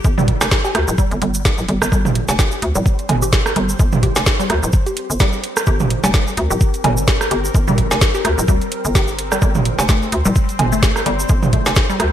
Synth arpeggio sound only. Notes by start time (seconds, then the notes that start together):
0.18 G3
0.65 G4
0.98 G3
1.22 G3
1.69 G3
1.92 G3
2.39 G4
2.76 G3
3.22 G4
3.56 G3
4.03 G4
4.40 G3
4.86 G4
5.20 G3
5.67 G4
6.04 G3
6.51 G4
6.84 G3
7.31 G4
7.68 G3
8.15 G4
8.48 G3
8.95 G4
9.32 G3
9.42 G3
9.89 A3
10.26 G3
10.72 A3
11.06 G3
11.53 A3
11.90 G3